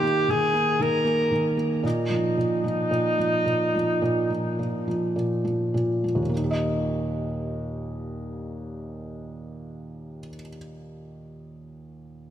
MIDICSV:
0, 0, Header, 1, 3, 480
1, 0, Start_track
1, 0, Key_signature, -3, "major"
1, 0, Tempo, 1048951
1, 844, Time_signature, 4, 2, 24, 8
1, 1332, Tempo, 1115242
1, 2292, Tempo, 1190476
1, 5180, End_track
2, 0, Start_track
2, 0, Title_t, "Alto saxophone"
2, 0, Program_c, 0, 65
2, 0, Note_on_c, 0, 67, 83
2, 141, Note_on_c, 0, 68, 76
2, 148, Note_off_c, 0, 67, 0
2, 374, Note_on_c, 0, 70, 83
2, 381, Note_off_c, 0, 68, 0
2, 718, Note_off_c, 0, 70, 0
2, 852, Note_on_c, 0, 63, 76
2, 2281, Note_off_c, 0, 63, 0
2, 5180, End_track
3, 0, Start_track
3, 0, Title_t, "Felt piano"
3, 0, Program_c, 1, 0
3, 0, Control_c, 1, 64, 127
3, 0, Note_on_c, 1, 51, 59
3, 0, Note_on_c, 1, 58, 45
3, 13, Note_off_c, 1, 58, 0
3, 13, Note_on_c, 1, 58, 42
3, 125, Note_off_c, 1, 51, 0
3, 131, Note_on_c, 1, 51, 44
3, 239, Note_off_c, 1, 58, 0
3, 245, Note_on_c, 1, 58, 48
3, 359, Note_off_c, 1, 51, 0
3, 366, Note_on_c, 1, 51, 44
3, 472, Note_off_c, 1, 58, 0
3, 479, Note_on_c, 1, 58, 45
3, 594, Note_off_c, 1, 51, 0
3, 601, Note_on_c, 1, 51, 43
3, 712, Note_off_c, 1, 58, 0
3, 719, Note_on_c, 1, 58, 39
3, 836, Note_off_c, 1, 51, 0
3, 838, Note_off_c, 1, 58, 0
3, 839, Note_on_c, 1, 46, 51
3, 850, Control_c, 1, 64, 0
3, 932, Control_c, 1, 64, 127
3, 962, Note_on_c, 1, 53, 41
3, 1078, Note_off_c, 1, 46, 0
3, 1085, Note_on_c, 1, 46, 41
3, 1201, Note_off_c, 1, 53, 0
3, 1208, Note_on_c, 1, 53, 42
3, 1324, Note_off_c, 1, 46, 0
3, 1331, Note_on_c, 1, 46, 43
3, 1442, Note_off_c, 1, 53, 0
3, 1449, Note_on_c, 1, 53, 42
3, 1560, Note_off_c, 1, 46, 0
3, 1567, Note_on_c, 1, 46, 42
3, 1685, Note_off_c, 1, 53, 0
3, 1692, Note_on_c, 1, 53, 42
3, 1802, Note_off_c, 1, 46, 0
3, 1809, Note_on_c, 1, 46, 53
3, 1924, Note_off_c, 1, 53, 0
3, 1931, Note_on_c, 1, 53, 37
3, 2048, Note_off_c, 1, 46, 0
3, 2055, Note_on_c, 1, 46, 37
3, 2171, Note_off_c, 1, 53, 0
3, 2178, Note_on_c, 1, 53, 38
3, 2293, Note_off_c, 1, 46, 0
3, 2299, Note_on_c, 1, 46, 37
3, 2409, Note_off_c, 1, 53, 0
3, 2415, Note_on_c, 1, 53, 38
3, 2528, Note_off_c, 1, 46, 0
3, 2534, Note_on_c, 1, 46, 36
3, 2648, Note_off_c, 1, 53, 0
3, 2654, Note_on_c, 1, 53, 34
3, 2700, Note_on_c, 1, 39, 40
3, 2722, Note_off_c, 1, 46, 0
3, 2728, Note_on_c, 1, 46, 36
3, 2757, Note_on_c, 1, 58, 38
3, 2767, Note_off_c, 1, 53, 0
3, 2772, Control_c, 1, 64, 0
3, 2786, Note_on_c, 1, 63, 36
3, 2815, Note_on_c, 1, 67, 35
3, 2843, Control_c, 1, 64, 127
3, 2843, Note_on_c, 1, 75, 45
3, 4330, Note_off_c, 1, 39, 0
3, 4359, Note_off_c, 1, 46, 0
3, 4387, Note_off_c, 1, 58, 0
3, 4417, Note_off_c, 1, 63, 0
3, 4446, Note_off_c, 1, 67, 0
3, 4474, Note_off_c, 1, 75, 0
3, 5180, End_track
0, 0, End_of_file